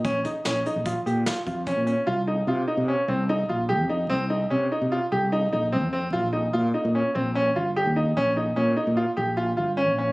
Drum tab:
HH |xxxxxxxxxx|----------|----------|----------|
SD |--o---o---|----------|----------|----------|
BD |oo--o--oo-|----------|----------|----------|

HH |----------|
SD |----------|
BD |----------|